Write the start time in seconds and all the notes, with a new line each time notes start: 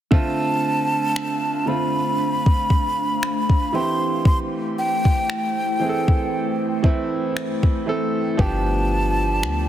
0.11 D3 A3 C4 D4 F4 C5 F5 A5, kick
1.16 finger snap
1.66 D3 A3 C4 F4 B5
2.46 kick
2.70 kick
3.23 finger snap
3.50 kick
3.73 E3 A3 C4 E4 G4 G5 C6
4.25 C6, kick
4.78 G5
5.05 kick
5.30 finger snap
5.79 E3 A3 C4 G#4
5.89 A4
6.08 kick
6.83 E3 A3 C4 E4, kick
7.37 finger snap
7.63 kick
7.86 E3 A3 C4 A4
8.37 G1 F3 B3 D4 F4 G4 D5 A5, kick
9.43 D2, finger snap